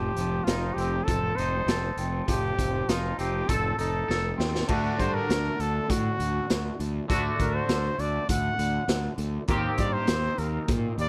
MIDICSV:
0, 0, Header, 1, 5, 480
1, 0, Start_track
1, 0, Tempo, 600601
1, 1827, Time_signature, 4, 2, 24, 8
1, 8862, End_track
2, 0, Start_track
2, 0, Title_t, "Trumpet"
2, 0, Program_c, 0, 56
2, 0, Note_on_c, 0, 67, 80
2, 353, Note_on_c, 0, 65, 79
2, 365, Note_off_c, 0, 67, 0
2, 586, Note_on_c, 0, 67, 81
2, 598, Note_off_c, 0, 65, 0
2, 830, Note_on_c, 0, 69, 98
2, 842, Note_off_c, 0, 67, 0
2, 1085, Note_on_c, 0, 72, 86
2, 1097, Note_off_c, 0, 69, 0
2, 1576, Note_off_c, 0, 72, 0
2, 1826, Note_on_c, 0, 67, 93
2, 2316, Note_on_c, 0, 65, 76
2, 2328, Note_off_c, 0, 67, 0
2, 2544, Note_off_c, 0, 65, 0
2, 2549, Note_on_c, 0, 67, 85
2, 2788, Note_on_c, 0, 69, 105
2, 2800, Note_off_c, 0, 67, 0
2, 3020, Note_off_c, 0, 69, 0
2, 3025, Note_on_c, 0, 69, 82
2, 3476, Note_off_c, 0, 69, 0
2, 3984, Note_on_c, 0, 72, 92
2, 4109, Note_on_c, 0, 70, 99
2, 4121, Note_off_c, 0, 72, 0
2, 4478, Note_on_c, 0, 69, 82
2, 4490, Note_off_c, 0, 70, 0
2, 4716, Note_on_c, 0, 66, 82
2, 4728, Note_off_c, 0, 69, 0
2, 5433, Note_off_c, 0, 66, 0
2, 5919, Note_on_c, 0, 70, 70
2, 6027, Note_on_c, 0, 72, 85
2, 6039, Note_off_c, 0, 70, 0
2, 6393, Note_on_c, 0, 74, 82
2, 6405, Note_off_c, 0, 72, 0
2, 6630, Note_off_c, 0, 74, 0
2, 6633, Note_on_c, 0, 78, 93
2, 7316, Note_off_c, 0, 78, 0
2, 7827, Note_on_c, 0, 74, 95
2, 7937, Note_on_c, 0, 72, 96
2, 7949, Note_off_c, 0, 74, 0
2, 8300, Note_on_c, 0, 70, 70
2, 8312, Note_off_c, 0, 72, 0
2, 8540, Note_off_c, 0, 70, 0
2, 8794, Note_on_c, 0, 74, 90
2, 8862, Note_off_c, 0, 74, 0
2, 8862, End_track
3, 0, Start_track
3, 0, Title_t, "Clean electric guitar"
3, 0, Program_c, 1, 27
3, 0, Note_on_c, 1, 53, 60
3, 141, Note_off_c, 1, 53, 0
3, 151, Note_on_c, 1, 53, 61
3, 388, Note_on_c, 1, 63, 57
3, 630, Note_on_c, 1, 60, 62
3, 865, Note_on_c, 1, 69, 71
3, 1106, Note_off_c, 1, 63, 0
3, 1116, Note_on_c, 1, 63, 63
3, 1339, Note_off_c, 1, 69, 0
3, 1349, Note_on_c, 1, 69, 71
3, 1351, Note_off_c, 1, 53, 0
3, 1576, Note_off_c, 1, 60, 0
3, 1585, Note_on_c, 1, 60, 62
3, 1819, Note_on_c, 1, 53, 68
3, 2056, Note_off_c, 1, 53, 0
3, 2066, Note_on_c, 1, 53, 54
3, 2299, Note_off_c, 1, 63, 0
3, 2309, Note_on_c, 1, 63, 62
3, 2537, Note_off_c, 1, 60, 0
3, 2546, Note_on_c, 1, 60, 63
3, 2551, Note_off_c, 1, 69, 0
3, 2788, Note_on_c, 1, 69, 72
3, 3015, Note_off_c, 1, 63, 0
3, 3025, Note_on_c, 1, 63, 55
3, 3254, Note_off_c, 1, 69, 0
3, 3263, Note_on_c, 1, 69, 75
3, 3269, Note_off_c, 1, 53, 0
3, 3489, Note_off_c, 1, 60, 0
3, 3499, Note_on_c, 1, 60, 65
3, 3740, Note_on_c, 1, 50, 83
3, 3745, Note_off_c, 1, 60, 0
3, 3747, Note_off_c, 1, 69, 0
3, 3748, Note_off_c, 1, 63, 0
3, 3749, Note_on_c, 1, 57, 74
3, 3756, Note_on_c, 1, 62, 74
3, 3759, Note_on_c, 1, 66, 75
3, 5650, Note_off_c, 1, 50, 0
3, 5654, Note_off_c, 1, 57, 0
3, 5658, Note_off_c, 1, 62, 0
3, 5659, Note_off_c, 1, 66, 0
3, 5661, Note_on_c, 1, 50, 74
3, 5668, Note_on_c, 1, 57, 82
3, 5673, Note_on_c, 1, 62, 79
3, 5677, Note_on_c, 1, 66, 84
3, 7566, Note_off_c, 1, 50, 0
3, 7569, Note_off_c, 1, 57, 0
3, 7572, Note_off_c, 1, 62, 0
3, 7574, Note_off_c, 1, 66, 0
3, 7577, Note_on_c, 1, 51, 77
3, 7582, Note_on_c, 1, 58, 83
3, 7589, Note_on_c, 1, 60, 81
3, 7596, Note_on_c, 1, 67, 85
3, 8862, Note_off_c, 1, 51, 0
3, 8862, Note_off_c, 1, 58, 0
3, 8862, Note_off_c, 1, 60, 0
3, 8862, Note_off_c, 1, 67, 0
3, 8862, End_track
4, 0, Start_track
4, 0, Title_t, "Fingered electric bass"
4, 0, Program_c, 2, 33
4, 131, Note_on_c, 2, 29, 85
4, 314, Note_off_c, 2, 29, 0
4, 371, Note_on_c, 2, 29, 80
4, 555, Note_off_c, 2, 29, 0
4, 608, Note_on_c, 2, 29, 77
4, 793, Note_off_c, 2, 29, 0
4, 860, Note_on_c, 2, 29, 81
4, 1042, Note_off_c, 2, 29, 0
4, 1098, Note_on_c, 2, 29, 82
4, 1280, Note_off_c, 2, 29, 0
4, 1328, Note_on_c, 2, 29, 84
4, 1515, Note_off_c, 2, 29, 0
4, 1572, Note_on_c, 2, 29, 84
4, 1757, Note_off_c, 2, 29, 0
4, 1821, Note_on_c, 2, 29, 89
4, 2003, Note_off_c, 2, 29, 0
4, 2065, Note_on_c, 2, 29, 82
4, 2246, Note_off_c, 2, 29, 0
4, 2305, Note_on_c, 2, 29, 88
4, 2486, Note_off_c, 2, 29, 0
4, 2545, Note_on_c, 2, 29, 78
4, 2726, Note_off_c, 2, 29, 0
4, 2787, Note_on_c, 2, 29, 77
4, 2968, Note_off_c, 2, 29, 0
4, 3026, Note_on_c, 2, 29, 71
4, 3207, Note_off_c, 2, 29, 0
4, 3268, Note_on_c, 2, 29, 85
4, 3448, Note_off_c, 2, 29, 0
4, 3505, Note_on_c, 2, 39, 75
4, 3686, Note_off_c, 2, 39, 0
4, 3751, Note_on_c, 2, 38, 92
4, 3905, Note_off_c, 2, 38, 0
4, 3987, Note_on_c, 2, 43, 83
4, 4142, Note_off_c, 2, 43, 0
4, 4230, Note_on_c, 2, 38, 89
4, 4384, Note_off_c, 2, 38, 0
4, 4470, Note_on_c, 2, 38, 78
4, 4624, Note_off_c, 2, 38, 0
4, 4710, Note_on_c, 2, 45, 83
4, 4864, Note_off_c, 2, 45, 0
4, 4950, Note_on_c, 2, 38, 77
4, 5103, Note_off_c, 2, 38, 0
4, 5201, Note_on_c, 2, 38, 77
4, 5351, Note_off_c, 2, 38, 0
4, 5430, Note_on_c, 2, 38, 83
4, 5584, Note_off_c, 2, 38, 0
4, 5674, Note_on_c, 2, 38, 97
4, 5826, Note_off_c, 2, 38, 0
4, 5910, Note_on_c, 2, 38, 78
4, 6063, Note_off_c, 2, 38, 0
4, 6144, Note_on_c, 2, 38, 82
4, 6299, Note_off_c, 2, 38, 0
4, 6381, Note_on_c, 2, 38, 82
4, 6537, Note_off_c, 2, 38, 0
4, 6623, Note_on_c, 2, 38, 89
4, 6778, Note_off_c, 2, 38, 0
4, 6857, Note_on_c, 2, 38, 81
4, 7013, Note_off_c, 2, 38, 0
4, 7096, Note_on_c, 2, 38, 87
4, 7252, Note_off_c, 2, 38, 0
4, 7335, Note_on_c, 2, 38, 93
4, 7491, Note_off_c, 2, 38, 0
4, 7579, Note_on_c, 2, 39, 88
4, 7734, Note_off_c, 2, 39, 0
4, 7816, Note_on_c, 2, 43, 76
4, 7971, Note_off_c, 2, 43, 0
4, 8058, Note_on_c, 2, 39, 80
4, 8212, Note_off_c, 2, 39, 0
4, 8296, Note_on_c, 2, 39, 85
4, 8451, Note_off_c, 2, 39, 0
4, 8534, Note_on_c, 2, 46, 88
4, 8689, Note_off_c, 2, 46, 0
4, 8772, Note_on_c, 2, 39, 80
4, 8862, Note_off_c, 2, 39, 0
4, 8862, End_track
5, 0, Start_track
5, 0, Title_t, "Drums"
5, 133, Note_on_c, 9, 42, 58
5, 213, Note_off_c, 9, 42, 0
5, 377, Note_on_c, 9, 42, 69
5, 381, Note_on_c, 9, 38, 103
5, 457, Note_off_c, 9, 42, 0
5, 461, Note_off_c, 9, 38, 0
5, 623, Note_on_c, 9, 42, 53
5, 703, Note_off_c, 9, 42, 0
5, 862, Note_on_c, 9, 36, 99
5, 862, Note_on_c, 9, 42, 75
5, 942, Note_off_c, 9, 36, 0
5, 942, Note_off_c, 9, 42, 0
5, 1104, Note_on_c, 9, 42, 52
5, 1184, Note_off_c, 9, 42, 0
5, 1344, Note_on_c, 9, 42, 73
5, 1348, Note_on_c, 9, 38, 93
5, 1423, Note_off_c, 9, 42, 0
5, 1427, Note_off_c, 9, 38, 0
5, 1580, Note_on_c, 9, 42, 62
5, 1660, Note_off_c, 9, 42, 0
5, 1822, Note_on_c, 9, 42, 75
5, 1825, Note_on_c, 9, 36, 96
5, 1902, Note_off_c, 9, 42, 0
5, 1905, Note_off_c, 9, 36, 0
5, 2067, Note_on_c, 9, 36, 70
5, 2069, Note_on_c, 9, 42, 57
5, 2147, Note_off_c, 9, 36, 0
5, 2149, Note_off_c, 9, 42, 0
5, 2309, Note_on_c, 9, 42, 82
5, 2313, Note_on_c, 9, 38, 93
5, 2389, Note_off_c, 9, 42, 0
5, 2393, Note_off_c, 9, 38, 0
5, 2549, Note_on_c, 9, 42, 55
5, 2629, Note_off_c, 9, 42, 0
5, 2789, Note_on_c, 9, 36, 97
5, 2789, Note_on_c, 9, 42, 78
5, 2869, Note_off_c, 9, 36, 0
5, 2869, Note_off_c, 9, 42, 0
5, 3027, Note_on_c, 9, 42, 52
5, 3106, Note_off_c, 9, 42, 0
5, 3278, Note_on_c, 9, 38, 53
5, 3358, Note_off_c, 9, 38, 0
5, 3516, Note_on_c, 9, 38, 75
5, 3595, Note_off_c, 9, 38, 0
5, 3637, Note_on_c, 9, 38, 72
5, 3717, Note_off_c, 9, 38, 0
5, 3743, Note_on_c, 9, 49, 78
5, 3750, Note_on_c, 9, 36, 103
5, 3823, Note_off_c, 9, 49, 0
5, 3830, Note_off_c, 9, 36, 0
5, 3992, Note_on_c, 9, 36, 76
5, 3994, Note_on_c, 9, 42, 55
5, 4072, Note_off_c, 9, 36, 0
5, 4074, Note_off_c, 9, 42, 0
5, 4237, Note_on_c, 9, 42, 76
5, 4241, Note_on_c, 9, 38, 105
5, 4317, Note_off_c, 9, 42, 0
5, 4321, Note_off_c, 9, 38, 0
5, 4476, Note_on_c, 9, 42, 55
5, 4556, Note_off_c, 9, 42, 0
5, 4714, Note_on_c, 9, 36, 104
5, 4716, Note_on_c, 9, 42, 83
5, 4794, Note_off_c, 9, 36, 0
5, 4796, Note_off_c, 9, 42, 0
5, 4955, Note_on_c, 9, 42, 58
5, 5035, Note_off_c, 9, 42, 0
5, 5194, Note_on_c, 9, 42, 76
5, 5198, Note_on_c, 9, 38, 100
5, 5274, Note_off_c, 9, 42, 0
5, 5278, Note_off_c, 9, 38, 0
5, 5436, Note_on_c, 9, 42, 60
5, 5516, Note_off_c, 9, 42, 0
5, 5672, Note_on_c, 9, 36, 102
5, 5678, Note_on_c, 9, 42, 80
5, 5752, Note_off_c, 9, 36, 0
5, 5758, Note_off_c, 9, 42, 0
5, 5911, Note_on_c, 9, 36, 81
5, 5911, Note_on_c, 9, 42, 60
5, 5991, Note_off_c, 9, 36, 0
5, 5991, Note_off_c, 9, 42, 0
5, 6146, Note_on_c, 9, 42, 83
5, 6150, Note_on_c, 9, 38, 108
5, 6226, Note_off_c, 9, 42, 0
5, 6230, Note_off_c, 9, 38, 0
5, 6389, Note_on_c, 9, 42, 56
5, 6469, Note_off_c, 9, 42, 0
5, 6625, Note_on_c, 9, 42, 90
5, 6627, Note_on_c, 9, 36, 100
5, 6705, Note_off_c, 9, 42, 0
5, 6707, Note_off_c, 9, 36, 0
5, 6865, Note_on_c, 9, 42, 57
5, 6945, Note_off_c, 9, 42, 0
5, 7101, Note_on_c, 9, 42, 77
5, 7105, Note_on_c, 9, 38, 100
5, 7181, Note_off_c, 9, 42, 0
5, 7185, Note_off_c, 9, 38, 0
5, 7337, Note_on_c, 9, 42, 59
5, 7416, Note_off_c, 9, 42, 0
5, 7575, Note_on_c, 9, 42, 66
5, 7581, Note_on_c, 9, 36, 105
5, 7654, Note_off_c, 9, 42, 0
5, 7661, Note_off_c, 9, 36, 0
5, 7814, Note_on_c, 9, 42, 59
5, 7819, Note_on_c, 9, 36, 82
5, 7894, Note_off_c, 9, 42, 0
5, 7899, Note_off_c, 9, 36, 0
5, 8050, Note_on_c, 9, 42, 78
5, 8054, Note_on_c, 9, 38, 117
5, 8130, Note_off_c, 9, 42, 0
5, 8134, Note_off_c, 9, 38, 0
5, 8298, Note_on_c, 9, 42, 52
5, 8378, Note_off_c, 9, 42, 0
5, 8537, Note_on_c, 9, 42, 78
5, 8539, Note_on_c, 9, 36, 112
5, 8617, Note_off_c, 9, 42, 0
5, 8619, Note_off_c, 9, 36, 0
5, 8779, Note_on_c, 9, 42, 48
5, 8859, Note_off_c, 9, 42, 0
5, 8862, End_track
0, 0, End_of_file